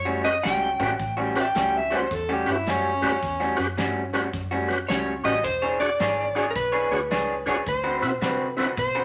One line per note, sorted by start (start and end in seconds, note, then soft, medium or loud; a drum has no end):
0.00 0.40 F#2 medium
0.00 0.24 C#5 medium
0.05 0.27 A2 medium
0.05 0.27 G3 medium
0.05 0.27 C#4 medium
0.05 0.27 F#4 medium
0.24 0.34 C#4 medium
0.24 0.34 F#4 medium
0.24 0.34 G4 medium
0.24 0.34 B4 medium
0.24 0.45 D#5 medium
0.24 snare soft
0.24 closed hi-hat medium
0.43 0.77 C#2 medium
0.43 0.67 A2 medium
0.43 0.67 G3 medium
0.43 0.67 C#4 medium
0.43 0.68 F#4 medium
0.43 1.31 G5 loud
0.43 snare loud
0.43 closed hi-hat medium
0.79 0.98 A1 loud
0.79 0.92 A2 loud
0.79 0.93 G3 medium
0.79 0.90 C#4 medium
0.79 0.93 C#4 medium
0.79 0.90 F#4 medium
0.79 0.93 F#4 loud
0.79 0.90 G4 medium
0.79 0.90 B4 medium
0.79 kick medium
0.79 snare soft
0.79 closed hi-hat medium
0.99 1.51 A1 medium
0.99 kick loud
0.99 snare soft
0.99 closed hi-hat medium
1.17 1.35 A2 medium
1.17 1.35 G3 medium
1.17 1.36 C#4 medium
1.17 1.35 F#4 medium
1.35 1.45 C#4 loud
1.35 1.45 F#4 medium
1.35 1.46 G4 medium
1.35 1.45 B4 loud
1.35 muted clean electric guitar stroke soft
1.35 snare soft
1.35 closed hi-hat medium
1.40 1.48 D5 medium
1.40 1.47 E5 medium
1.40 1.79 G5 loud
1.55 2.07 C#2 medium
1.55 1.78 A2 medium
1.55 1.79 G3 medium
1.55 1.79 C#4 medium
1.55 1.79 F#4 medium
1.55 snare loud
1.55 closed hi-hat medium
1.78 1.94 E5 medium
1.90 2.04 A2 medium
1.90 2.04 G3 medium
1.90 2.00 C#4 medium
1.90 2.04 C#4 medium
1.90 2.01 F#4 medium
1.90 2.05 F#4 medium
1.90 2.01 G4 medium
1.90 2.01 B4 medium
1.90 snare soft
1.90 closed hi-hat medium
1.96 2.16 C5 medium
2.11 2.44 E2 medium
2.11 2.35 A4 medium
2.11 kick loud
2.11 snare soft
2.11 closed hi-hat medium
2.29 2.50 A2 medium
2.29 2.50 G3 medium
2.29 2.50 C#4 medium
2.29 2.50 F#4 medium
2.33 2.53 G4 medium
2.46 2.65 G2 medium
2.46 2.56 C#4 medium
2.46 2.56 F#4 medium
2.46 2.56 G4 medium
2.46 2.57 B4 medium
2.46 snare soft
2.46 closed hi-hat medium
2.51 2.71 E4 medium
2.66 3.18 F#2 medium
2.66 2.90 A2 medium
2.66 2.90 G3 medium
2.66 2.91 C#4 medium
2.66 3.76 C#4 loud
2.66 2.91 F#4 medium
2.66 snare medium
2.66 closed hi-hat medium
3.02 3.15 A2 medium
3.02 3.15 G3 medium
3.02 3.12 C#4 medium
3.02 3.16 C#4 medium
3.02 3.12 F#4 medium
3.02 3.16 F#4 loud
3.02 3.12 G4 medium
3.02 3.12 B4 loud
3.02 kick medium
3.02 snare soft
3.02 closed hi-hat medium
3.22 3.55 E2 medium
3.22 kick loud
3.22 snare soft
3.22 closed hi-hat medium
3.40 3.57 A2 medium
3.40 3.58 G3 medium
3.40 3.58 C#4 medium
3.40 3.58 F#4 medium
3.56 3.77 F#2 medium
3.56 3.67 C#4 medium
3.56 3.67 F#4 medium
3.56 3.67 G4 medium
3.56 3.67 B4 loud
3.56 muted clean electric guitar stroke soft
3.56 snare soft
3.56 closed hi-hat medium
3.77 4.29 G2 medium
3.77 4.01 A2 medium
3.77 4.01 G3 medium
3.77 4.01 C#4 medium
3.77 4.01 F#4 medium
3.77 snare loud
3.77 closed hi-hat medium
4.13 4.26 A2 medium
4.13 4.27 G3 medium
4.13 4.23 C#4 medium
4.13 4.27 C#4 medium
4.13 4.23 F#4 medium
4.13 4.27 F#4 medium
4.13 4.23 G4 medium
4.13 4.23 B4 medium
4.13 snare soft
4.13 closed hi-hat medium
4.33 4.85 F#2 medium
4.33 kick loud
4.33 snare soft
4.33 closed hi-hat medium
4.51 4.73 A2 medium
4.51 4.73 G3 medium
4.51 4.72 C#4 medium
4.51 4.72 F#4 medium
4.68 4.78 C#4 medium
4.68 4.79 F#4 medium
4.68 4.79 G4 medium
4.68 4.79 B4 medium
4.68 snare soft
4.68 closed hi-hat medium
4.88 5.22 C#2 medium
4.88 5.12 A2 medium
4.88 5.12 G3 medium
4.88 5.12 C#4 loud
4.88 5.13 F#4 medium
4.88 5.25 C#5 medium
4.88 snare loud
4.88 closed hi-hat medium
5.24 5.43 A1 medium
5.24 5.37 A2 medium
5.24 5.38 G3 medium
5.24 5.34 C#4 medium
5.24 5.38 C#4 medium
5.24 5.34 F#4 medium
5.24 5.38 F#4 medium
5.24 5.34 G4 medium
5.24 5.34 B4 medium
5.24 5.45 D#5 loud
5.24 kick medium
5.24 snare soft
5.24 closed hi-hat medium
5.44 5.96 E1 medium
5.44 5.81 C5 loud
5.44 kick loud
5.44 snare soft
5.44 closed hi-hat medium
5.62 5.79 E3 medium
5.62 5.79 D4 medium
5.62 5.79 G#4 medium
5.62 5.80 C#5 medium
5.79 5.90 D4 medium
5.79 5.90 F#4 medium
5.79 5.90 G#4 medium
5.79 5.90 C#5 medium
5.79 6.46 D5 loud
5.79 muted clean electric guitar stroke medium
5.79 snare soft
5.79 closed hi-hat medium
5.99 6.51 G#1 medium
5.99 6.23 E3 medium
5.99 6.23 D4 medium
5.99 6.23 G#4 medium
5.99 6.23 C#5 medium
5.99 snare loud
5.99 closed hi-hat medium
6.35 6.48 E3 medium
6.35 6.45 D4 medium
6.35 6.49 D4 medium
6.35 6.45 F#4 medium
6.35 6.45 G#4 medium
6.35 6.49 G#4 medium
6.35 6.45 C#5 medium
6.35 6.49 C#5 medium
6.35 snare soft
6.35 closed hi-hat soft
6.51 6.55 A#4 medium
6.56 6.89 B1 medium
6.56 7.68 B4 medium
6.56 kick loud
6.56 snare soft
6.56 closed hi-hat medium
6.72 6.94 E3 medium
6.72 6.94 D4 medium
6.72 6.94 G#4 medium
6.72 6.93 C#5 medium
6.91 7.09 D2 medium
6.91 7.01 D4 medium
6.91 7.01 F#4 medium
6.91 7.01 G#4 medium
6.91 7.01 C#5 medium
6.91 snare soft
6.91 closed hi-hat medium
7.11 7.62 C#2 medium
7.11 7.34 E3 medium
7.11 7.34 D4 loud
7.11 7.34 G#4 medium
7.11 7.34 C#5 medium
7.11 snare loud
7.11 closed hi-hat medium
7.46 7.59 E3 medium
7.46 7.56 D4 medium
7.46 7.60 D4 medium
7.46 7.56 F#4 medium
7.46 7.56 G#4 medium
7.46 7.60 G#4 medium
7.46 7.56 C#5 medium
7.46 7.60 C#5 medium
7.46 kick medium
7.46 snare soft
7.46 closed hi-hat medium
7.66 8.00 D2 medium
7.66 8.28 C5 medium
7.66 kick loud
7.66 snare soft
7.66 closed hi-hat medium
7.84 8.01 D3 medium
7.84 8.01 C4 medium
7.84 8.01 F#4 medium
7.84 8.01 B4 medium
8.02 8.20 B2 medium
8.02 8.12 C4 medium
8.02 8.12 E4 medium
8.02 8.12 F#4 medium
8.02 8.12 B4 medium
8.02 muted clean electric guitar stroke soft
8.02 snare soft
8.02 closed hi-hat medium
8.21 8.73 C3 loud
8.21 8.45 D3 medium
8.21 8.45 C4 medium
8.21 8.45 F#4 medium
8.21 8.45 B4 medium
8.21 snare loud
8.21 closed hi-hat medium
8.28 8.54 B4 medium
8.57 8.71 D3 medium
8.57 8.67 C4 medium
8.57 8.71 C4 medium
8.57 8.67 E4 medium
8.57 8.67 F#4 medium
8.57 8.71 F#4 loud
8.57 8.67 B4 loud
8.57 8.71 B4 medium
8.57 snare soft
8.57 closed hi-hat medium
8.77 9.04 B2 medium
8.77 9.04 C5 medium
8.77 kick loud
8.77 snare soft
8.77 closed hi-hat medium
8.95 9.04 D3 medium
8.95 9.04 C4 medium
8.95 9.04 F#4 medium
8.95 9.04 B4 medium